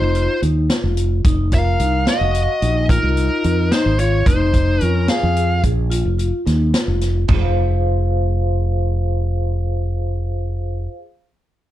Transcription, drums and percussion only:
0.15 closed hi-hat medium
0.43 closed hi-hat medium
0.70 snare loud
0.70 closed hi-hat medium
0.97 closed hi-hat medium
1.25 kick loud
1.25 closed hi-hat medium
1.52 kick medium
1.52 snare soft
1.52 closed hi-hat medium
1.80 closed hi-hat medium
2.07 snare loud
2.07 closed hi-hat medium
2.35 closed hi-hat medium
2.62 closed hi-hat medium
2.89 kick loud
2.89 closed hi-hat medium
3.17 closed hi-hat medium
3.44 closed hi-hat medium
3.72 snare loud
3.72 closed hi-hat medium
3.99 closed hi-hat medium
4.26 kick medium
4.26 closed hi-hat medium
4.54 kick medium
4.54 closed hi-hat medium
4.81 closed hi-hat medium
5.08 snare loud
5.08 closed hi-hat medium
5.36 closed hi-hat medium
5.63 kick medium
5.63 closed hi-hat medium
5.91 closed hi-hat medium
6.19 closed hi-hat medium
6.47 snare soft
6.47 closed hi-hat medium
6.74 snare loud
6.74 closed hi-hat medium
7.01 snare soft
7.01 closed hi-hat medium
7.28 kick medium
7.28 floor tom medium
7.28 china medium

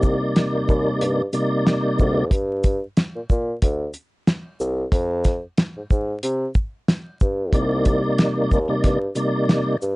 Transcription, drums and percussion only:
0.03 kick medium
0.03 shaker medium
0.36 snare loud
0.36 closed hi-hat medium
0.69 kick medium
0.69 shaker soft
1.01 closed hi-hat medium
1.33 closed hi-hat medium
1.33 shaker soft
1.67 snare loud
1.67 closed hi-hat medium
1.99 kick medium
1.99 shaker medium
2.31 kick loud
2.31 closed hi-hat loud
2.64 kick medium
2.64 closed hi-hat medium
2.64 shaker medium
2.97 snare loud
2.97 closed hi-hat medium
3.30 kick medium
3.30 shaker medium
3.62 kick medium
3.62 closed hi-hat medium
3.94 closed hi-hat soft
3.94 shaker soft
4.27 snare loud
4.27 closed hi-hat medium
4.60 shaker medium
4.92 kick loud
4.92 closed hi-hat loud
5.24 kick medium
5.24 snare soft
5.24 closed hi-hat medium
5.24 shaker medium
5.58 snare loud
5.58 closed hi-hat medium
5.91 kick medium
5.91 shaker soft
6.23 closed hi-hat medium
6.55 kick medium
6.55 shaker medium
6.88 snare loud
6.88 closed hi-hat medium
7.21 kick medium
7.21 shaker medium
7.53 kick loud
7.53 closed hi-hat loud
7.85 kick medium
7.85 closed hi-hat medium
7.85 shaker medium
8.18 snare loud
8.18 closed hi-hat medium
8.51 kick medium
8.51 shaker soft
8.84 kick medium
8.84 snare soft
8.84 closed hi-hat medium
9.16 closed hi-hat medium
9.16 shaker soft
9.49 snare loud
9.49 closed hi-hat medium
9.82 shaker medium

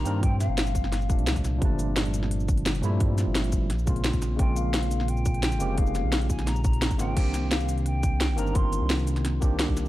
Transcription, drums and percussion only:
0.06 closed hi-hat medium
0.06 cabasa medium
0.23 kick loud
0.23 closed hi-hat medium
0.40 snare soft
0.40 closed hi-hat medium
0.40 cabasa medium
0.58 snare loud
0.58 closed hi-hat medium
0.67 closed hi-hat soft
0.67 cabasa soft
0.75 kick medium
0.75 closed hi-hat medium
0.75 cabasa medium
0.84 snare soft
0.92 snare soft
0.92 closed hi-hat medium
1.01 cabasa soft
1.10 kick loud
1.10 closed hi-hat medium
1.10 cabasa medium
1.19 closed hi-hat soft
1.27 snare loud
1.27 closed hi-hat medium
1.36 kick medium
1.36 closed hi-hat soft
1.36 cabasa soft
1.44 snare soft
1.44 closed hi-hat medium
1.44 cabasa medium
1.62 kick loud
1.62 closed hi-hat medium
1.79 closed hi-hat medium
1.79 cabasa medium
1.96 snare loud
1.96 closed hi-hat loud
2.05 closed hi-hat soft
2.14 closed hi-hat medium
2.14 cabasa medium
2.23 snare soft
2.31 closed hi-hat medium
2.40 cabasa soft
2.48 kick loud
2.48 closed hi-hat medium
2.48 cabasa medium
2.57 closed hi-hat soft
2.66 snare loud
2.66 closed hi-hat medium
2.75 closed hi-hat soft
2.75 cabasa soft
2.83 closed hi-hat medium
2.83 cabasa medium
3.00 kick loud
3.00 closed hi-hat loud
3.18 snare soft
3.18 closed hi-hat medium
3.18 cabasa medium
3.35 snare loud
3.35 closed hi-hat medium
3.44 closed hi-hat soft
3.52 kick medium
3.52 closed hi-hat medium
3.52 cabasa medium
3.70 snare soft
3.70 closed hi-hat medium
3.79 cabasa soft
3.87 kick loud
3.87 closed hi-hat medium
3.87 cabasa medium
3.96 closed hi-hat soft
4.04 snare loud
4.04 closed hi-hat medium
4.13 kick medium
4.13 closed hi-hat soft
4.13 cabasa soft
4.22 snare soft
4.22 closed hi-hat medium
4.22 cabasa medium
4.39 kick loud
4.39 closed hi-hat loud
4.56 closed hi-hat medium
4.56 cabasa medium
4.74 snare loud
4.74 closed hi-hat loud
4.83 closed hi-hat soft
4.91 closed hi-hat medium
4.91 cabasa medium
5.00 snare soft
5.08 closed hi-hat medium
5.17 cabasa soft
5.26 kick loud
5.26 closed hi-hat medium
5.26 cabasa medium
5.34 closed hi-hat soft
5.43 snare loud
5.43 closed hi-hat loud
5.52 closed hi-hat soft
5.52 cabasa soft
5.60 closed hi-hat medium
5.60 cabasa medium
5.78 kick loud
5.78 closed hi-hat loud
5.87 cabasa soft
5.95 snare soft
5.95 closed hi-hat medium
5.95 cabasa medium
6.12 snare loud
6.12 closed hi-hat loud
6.21 closed hi-hat soft
6.30 kick medium
6.30 closed hi-hat medium
6.30 cabasa medium
6.39 snare soft
6.39 closed hi-hat soft
6.47 snare soft
6.47 closed hi-hat loud
6.56 cabasa soft
6.64 kick loud
6.64 closed hi-hat medium
6.64 cabasa medium
6.73 closed hi-hat soft
6.82 snare loud
6.82 closed hi-hat loud
6.91 kick medium
6.91 closed hi-hat soft
6.91 cabasa soft
6.99 snare soft
6.99 closed hi-hat medium
6.99 cabasa medium
7.17 kick loud
7.17 closed hi-hat loud
7.17 crash loud
7.34 snare soft
7.34 closed hi-hat medium
7.34 cabasa medium
7.51 snare loud
7.51 closed hi-hat loud
7.60 cabasa soft
7.69 closed hi-hat medium
7.69 cabasa medium
7.78 closed hi-hat soft
7.86 closed hi-hat loud
8.03 kick loud
8.03 closed hi-hat medium
8.03 cabasa medium
8.21 snare loud
8.21 closed hi-hat loud
8.38 closed hi-hat medium
8.38 cabasa medium
8.47 cabasa soft
8.55 kick loud
8.55 closed hi-hat loud
8.73 closed hi-hat medium
8.73 cabasa medium
8.90 snare loud
8.90 closed hi-hat loud
8.99 cabasa soft
9.07 closed hi-hat medium
9.07 cabasa medium
9.16 snare soft
9.16 closed hi-hat soft
9.25 snare medium
9.25 closed hi-hat medium
9.42 kick loud
9.42 closed hi-hat medium
9.42 cabasa medium
9.59 snare loud
9.59 closed hi-hat loud
9.68 kick medium
9.77 snare soft
9.77 closed hi-hat medium
9.77 cabasa medium

